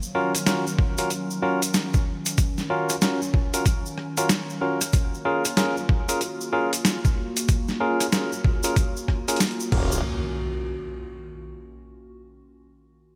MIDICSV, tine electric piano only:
0, 0, Header, 1, 2, 480
1, 0, Start_track
1, 0, Key_signature, -6, "minor"
1, 0, Tempo, 638298
1, 1791, Time_signature, 4, 2, 24, 8
1, 9893, End_track
2, 0, Start_track
2, 0, Title_t, "Tine electric piano"
2, 0, Program_c, 0, 4
2, 112, Note_on_c, 0, 61, 96
2, 112, Note_on_c, 0, 65, 86
2, 112, Note_on_c, 0, 66, 86
2, 112, Note_on_c, 0, 70, 103
2, 244, Note_off_c, 0, 61, 0
2, 244, Note_off_c, 0, 65, 0
2, 245, Note_off_c, 0, 66, 0
2, 245, Note_off_c, 0, 70, 0
2, 351, Note_on_c, 0, 65, 79
2, 352, Note_on_c, 0, 61, 86
2, 352, Note_on_c, 0, 66, 81
2, 352, Note_on_c, 0, 70, 96
2, 484, Note_off_c, 0, 65, 0
2, 485, Note_off_c, 0, 61, 0
2, 485, Note_off_c, 0, 66, 0
2, 485, Note_off_c, 0, 70, 0
2, 741, Note_on_c, 0, 61, 84
2, 741, Note_on_c, 0, 65, 81
2, 741, Note_on_c, 0, 66, 79
2, 741, Note_on_c, 0, 70, 100
2, 821, Note_off_c, 0, 61, 0
2, 821, Note_off_c, 0, 65, 0
2, 821, Note_off_c, 0, 66, 0
2, 821, Note_off_c, 0, 70, 0
2, 1071, Note_on_c, 0, 65, 86
2, 1071, Note_on_c, 0, 66, 86
2, 1071, Note_on_c, 0, 70, 106
2, 1072, Note_on_c, 0, 61, 97
2, 1204, Note_off_c, 0, 61, 0
2, 1204, Note_off_c, 0, 65, 0
2, 1204, Note_off_c, 0, 66, 0
2, 1204, Note_off_c, 0, 70, 0
2, 2031, Note_on_c, 0, 61, 95
2, 2031, Note_on_c, 0, 65, 90
2, 2031, Note_on_c, 0, 66, 85
2, 2031, Note_on_c, 0, 70, 99
2, 2219, Note_off_c, 0, 61, 0
2, 2219, Note_off_c, 0, 65, 0
2, 2219, Note_off_c, 0, 66, 0
2, 2219, Note_off_c, 0, 70, 0
2, 2269, Note_on_c, 0, 61, 73
2, 2269, Note_on_c, 0, 65, 65
2, 2269, Note_on_c, 0, 66, 66
2, 2269, Note_on_c, 0, 70, 80
2, 2403, Note_off_c, 0, 61, 0
2, 2403, Note_off_c, 0, 65, 0
2, 2403, Note_off_c, 0, 66, 0
2, 2403, Note_off_c, 0, 70, 0
2, 2660, Note_on_c, 0, 66, 77
2, 2660, Note_on_c, 0, 70, 99
2, 2661, Note_on_c, 0, 61, 86
2, 2661, Note_on_c, 0, 65, 82
2, 2740, Note_off_c, 0, 61, 0
2, 2740, Note_off_c, 0, 65, 0
2, 2740, Note_off_c, 0, 66, 0
2, 2740, Note_off_c, 0, 70, 0
2, 3139, Note_on_c, 0, 61, 89
2, 3140, Note_on_c, 0, 65, 82
2, 3140, Note_on_c, 0, 66, 79
2, 3140, Note_on_c, 0, 70, 94
2, 3220, Note_off_c, 0, 61, 0
2, 3220, Note_off_c, 0, 65, 0
2, 3220, Note_off_c, 0, 66, 0
2, 3220, Note_off_c, 0, 70, 0
2, 3469, Note_on_c, 0, 65, 73
2, 3469, Note_on_c, 0, 70, 91
2, 3470, Note_on_c, 0, 61, 82
2, 3470, Note_on_c, 0, 66, 78
2, 3603, Note_off_c, 0, 61, 0
2, 3603, Note_off_c, 0, 65, 0
2, 3603, Note_off_c, 0, 66, 0
2, 3603, Note_off_c, 0, 70, 0
2, 3949, Note_on_c, 0, 65, 88
2, 3950, Note_on_c, 0, 61, 90
2, 3950, Note_on_c, 0, 68, 88
2, 3950, Note_on_c, 0, 70, 105
2, 4083, Note_off_c, 0, 61, 0
2, 4083, Note_off_c, 0, 65, 0
2, 4083, Note_off_c, 0, 68, 0
2, 4084, Note_off_c, 0, 70, 0
2, 4188, Note_on_c, 0, 61, 88
2, 4188, Note_on_c, 0, 68, 81
2, 4188, Note_on_c, 0, 70, 99
2, 4189, Note_on_c, 0, 65, 81
2, 4323, Note_off_c, 0, 61, 0
2, 4323, Note_off_c, 0, 65, 0
2, 4323, Note_off_c, 0, 68, 0
2, 4323, Note_off_c, 0, 70, 0
2, 4578, Note_on_c, 0, 61, 86
2, 4578, Note_on_c, 0, 65, 82
2, 4578, Note_on_c, 0, 68, 79
2, 4578, Note_on_c, 0, 70, 99
2, 4659, Note_off_c, 0, 61, 0
2, 4659, Note_off_c, 0, 65, 0
2, 4659, Note_off_c, 0, 68, 0
2, 4659, Note_off_c, 0, 70, 0
2, 4908, Note_on_c, 0, 61, 96
2, 4908, Note_on_c, 0, 65, 86
2, 4908, Note_on_c, 0, 68, 89
2, 4908, Note_on_c, 0, 70, 104
2, 5042, Note_off_c, 0, 68, 0
2, 5043, Note_off_c, 0, 61, 0
2, 5043, Note_off_c, 0, 65, 0
2, 5043, Note_off_c, 0, 70, 0
2, 5869, Note_on_c, 0, 65, 83
2, 5869, Note_on_c, 0, 68, 88
2, 5869, Note_on_c, 0, 70, 102
2, 5870, Note_on_c, 0, 61, 91
2, 6058, Note_off_c, 0, 61, 0
2, 6058, Note_off_c, 0, 65, 0
2, 6058, Note_off_c, 0, 68, 0
2, 6058, Note_off_c, 0, 70, 0
2, 6110, Note_on_c, 0, 61, 74
2, 6110, Note_on_c, 0, 65, 63
2, 6110, Note_on_c, 0, 70, 83
2, 6111, Note_on_c, 0, 68, 69
2, 6243, Note_off_c, 0, 61, 0
2, 6243, Note_off_c, 0, 70, 0
2, 6244, Note_off_c, 0, 65, 0
2, 6244, Note_off_c, 0, 68, 0
2, 6498, Note_on_c, 0, 61, 88
2, 6498, Note_on_c, 0, 65, 80
2, 6498, Note_on_c, 0, 68, 77
2, 6499, Note_on_c, 0, 70, 99
2, 6579, Note_off_c, 0, 61, 0
2, 6579, Note_off_c, 0, 65, 0
2, 6579, Note_off_c, 0, 68, 0
2, 6580, Note_off_c, 0, 70, 0
2, 6979, Note_on_c, 0, 65, 78
2, 6979, Note_on_c, 0, 68, 77
2, 6979, Note_on_c, 0, 70, 98
2, 6980, Note_on_c, 0, 61, 86
2, 7060, Note_off_c, 0, 61, 0
2, 7060, Note_off_c, 0, 65, 0
2, 7060, Note_off_c, 0, 68, 0
2, 7060, Note_off_c, 0, 70, 0
2, 7310, Note_on_c, 0, 61, 81
2, 7310, Note_on_c, 0, 65, 77
2, 7310, Note_on_c, 0, 66, 74
2, 7310, Note_on_c, 0, 70, 91
2, 7500, Note_off_c, 0, 61, 0
2, 7500, Note_off_c, 0, 65, 0
2, 7500, Note_off_c, 0, 66, 0
2, 7500, Note_off_c, 0, 70, 0
2, 9893, End_track
0, 0, End_of_file